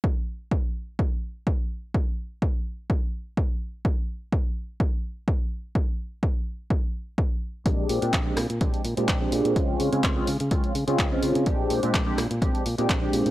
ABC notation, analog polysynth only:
X:1
M:4/4
L:1/16
Q:"Swing 16ths" 1/4=126
K:Bbmix
V:1 name="Analog polysynth"
z16 | z16 | z16 | z16 |
[A,CDG]3 [A,CDG]2 [A,CDG] z2 [A,CDG]2 z [A,CDG]2 [A,CDG]3 | [A,C_DF]3 [A,CDF]2 [A,CDF] z2 [A,CDF]2 z [A,CDF]2 [A,CDF]3 | [A,CDG]3 [A,CDG]2 [A,CDG] z2 [A,CDG]2 z [A,CDG]2 [A,CDG]3 |]